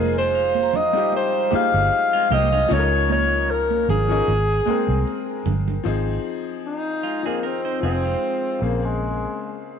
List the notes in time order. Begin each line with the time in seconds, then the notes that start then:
Already playing: F1 F3 G#3 D#4 F4 G#4 A#4 C5
0.18 C5
0.33 F5, muted conga
0.55 high conga
0.62 A#5
0.73 D#5, muted conga, low conga
0.93 G3 D#4 F4
0.97 G4
1.12 C5, muted conga
1.51 D#4 F4 G4 G#4 G5, muted fingered electric bass stroke, muted conga, high conga
1.55 F5
1.74 G1
2.13 G#3 F4
2.30 C2 A#3 G4 D#5, muted conga, high conga, low conga
2.52 G#3 F4, low conga
2.68 C#2 C#3 F3 A#3 C#4 D#4 F4, muted conga
2.73 A4 C#5
2.79 A#4
3.10 C#5, muted conga, high conga
3.49 A#4, muted conga
3.70 high conga
3.89 G#1 G#4, low conga
4.08 F3 C#4 D#4 A#4
4.28 G#1 G#3 C4 G#4, muted conga
4.66 G#3 C4 G5, muted fingered electric bass stroke, muted conga, high conga
4.70 A#4
4.88 C2
5.07 muted conga
5.46 G1, muted conga, low conga
5.68 low conga
5.84 G#1 F3 C4 D#4 G#4
6.66 D#4
7.03 G#3 F4
7.23 F3 A#3 C4 D#4 G#4
7.43 C4 A#4
7.65 D#4 C5
7.80 F1 F3 C4 D#4 G#4
7.84 C4 F4
8.05 G#3 F4
8.59 A#1 C#3 A#3 C4
8.63 G#4
8.85 G#3